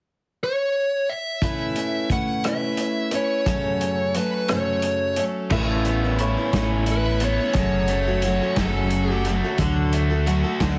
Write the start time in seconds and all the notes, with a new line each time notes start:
0.44 C#5
1.10 E5
1.42 A3 C#4 E4 B4, kick, closed hi-hat
1.76 closed hi-hat
2.09 A3 C#4 E4 B4 F#5, kick, closed hi-hat
2.44 A3 C#4 E4 B4 E5, cross-stick, closed hi-hat
2.77 closed hi-hat
3.11 C#4 E4 B4 C#5, closed hi-hat
3.46 F#2 C#3 F#3 A3 C#4 A4, kick, closed hi-hat
3.81 closed hi-hat
4.15 F#3 A3 C#4 A4 B4, closed hi-hat
4.48 F#2 C#3 F#3 A3 C#4 A4 C#5, cross-stick, closed hi-hat
4.82 closed hi-hat
5.16 F#3 A3 C#4 A4, closed hi-hat
5.50 A1 A2 A3 C#4 E4 B4 E5, kick, crash
5.85 B3, closed hi-hat
6.04 C#4 E4 B4
6.19 A3 C#4 E4 C#5, closed hi-hat
6.23 B4
6.37 C#4 E4 B4
6.53 A1 A3 C#4 E4 B4, kick, snare, closed hi-hat
6.86 E4, closed hi-hat
6.92 B4
7.05 C#4 E4 B4
7.20 A3 B3 C#4 E4 B4, closed hi-hat
7.25 C#5
7.40 C#4 E4 B4
7.53 F#1 F#2 C#3 C#5, kick, closed hi-hat
7.58 F#3 A3 F#4 A4
7.88 A3, closed hi-hat
8.07 F#3 A3 F#4 A4
8.22 F#3 A3 F#4, closed hi-hat
8.26 A4
8.41 F#3 A3 F#4 A4
8.56 F#1 F#2 C#3 A3 C#4 A4, kick, snare, closed hi-hat
8.60 F#3 F#4 A4
8.91 F#4, closed hi-hat
9.10 F#3 A3 F#4 G4 A4
9.25 F#3 A3 F#4, closed hi-hat
9.29 A4
9.44 F#3 A3 F#4 A4
9.58 D2 D3 F#3 A3 F#4 A4, kick, closed hi-hat
9.93 A3, closed hi-hat
10.10 A3 F#4 A4
10.26 F#3 A3 F#4 A4, closed hi-hat
10.44 A3 F#4 A4
10.60 D2 D3 F#3 A3 D4 F#4 A4, kick, snare, closed hi-hat